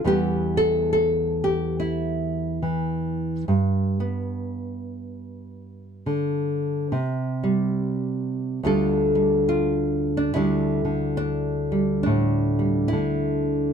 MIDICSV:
0, 0, Header, 1, 2, 480
1, 0, Start_track
1, 0, Tempo, 858369
1, 25, Time_signature, 4, 2, 24, 8
1, 7678, End_track
2, 0, Start_track
2, 0, Title_t, "Nylon-string guitar"
2, 0, Program_c, 0, 24
2, 24, Note_on_c, 0, 40, 65
2, 27, Note_on_c, 0, 52, 44
2, 33, Note_on_c, 0, 55, 49
2, 36, Note_on_c, 0, 59, 49
2, 41, Note_on_c, 0, 67, 93
2, 318, Note_off_c, 0, 67, 0
2, 320, Note_on_c, 0, 69, 93
2, 511, Note_off_c, 0, 69, 0
2, 518, Note_on_c, 0, 69, 86
2, 796, Note_off_c, 0, 69, 0
2, 804, Note_on_c, 0, 67, 82
2, 993, Note_off_c, 0, 67, 0
2, 1004, Note_on_c, 0, 64, 74
2, 1461, Note_off_c, 0, 52, 0
2, 1467, Note_on_c, 0, 52, 57
2, 1923, Note_off_c, 0, 40, 0
2, 1924, Note_off_c, 0, 52, 0
2, 1946, Note_on_c, 0, 43, 66
2, 1956, Note_off_c, 0, 64, 0
2, 2230, Note_off_c, 0, 59, 0
2, 2235, Note_off_c, 0, 55, 0
2, 2237, Note_on_c, 0, 59, 52
2, 3390, Note_on_c, 0, 50, 54
2, 3844, Note_off_c, 0, 43, 0
2, 3847, Note_off_c, 0, 59, 0
2, 3869, Note_off_c, 0, 50, 0
2, 3869, Note_on_c, 0, 48, 70
2, 4158, Note_on_c, 0, 55, 56
2, 4805, Note_off_c, 0, 48, 0
2, 4828, Note_on_c, 0, 38, 74
2, 4831, Note_off_c, 0, 55, 0
2, 4835, Note_on_c, 0, 50, 57
2, 4838, Note_on_c, 0, 55, 57
2, 4841, Note_on_c, 0, 65, 57
2, 4846, Note_on_c, 0, 69, 67
2, 5111, Note_off_c, 0, 55, 0
2, 5118, Note_on_c, 0, 55, 51
2, 5298, Note_off_c, 0, 65, 0
2, 5305, Note_on_c, 0, 65, 85
2, 5686, Note_off_c, 0, 65, 0
2, 5688, Note_on_c, 0, 62, 72
2, 5773, Note_off_c, 0, 69, 0
2, 5780, Note_on_c, 0, 64, 91
2, 5781, Note_off_c, 0, 38, 0
2, 5785, Note_off_c, 0, 50, 0
2, 5787, Note_off_c, 0, 55, 0
2, 5787, Note_off_c, 0, 62, 0
2, 5787, Note_on_c, 0, 38, 70
2, 5791, Note_on_c, 0, 50, 47
2, 5795, Note_on_c, 0, 55, 48
2, 5795, Note_on_c, 0, 62, 47
2, 6063, Note_off_c, 0, 50, 0
2, 6065, Note_on_c, 0, 50, 58
2, 6245, Note_off_c, 0, 62, 0
2, 6247, Note_on_c, 0, 62, 87
2, 6545, Note_off_c, 0, 55, 0
2, 6552, Note_on_c, 0, 55, 47
2, 6721, Note_off_c, 0, 62, 0
2, 6728, Note_on_c, 0, 62, 76
2, 6743, Note_off_c, 0, 64, 0
2, 6745, Note_on_c, 0, 45, 66
2, 7031, Note_off_c, 0, 55, 0
2, 7040, Note_on_c, 0, 55, 42
2, 7203, Note_on_c, 0, 64, 83
2, 7221, Note_off_c, 0, 50, 0
2, 7225, Note_off_c, 0, 45, 0
2, 7228, Note_on_c, 0, 50, 57
2, 7678, Note_off_c, 0, 38, 0
2, 7678, Note_off_c, 0, 50, 0
2, 7678, Note_off_c, 0, 55, 0
2, 7678, Note_off_c, 0, 62, 0
2, 7678, Note_off_c, 0, 64, 0
2, 7678, End_track
0, 0, End_of_file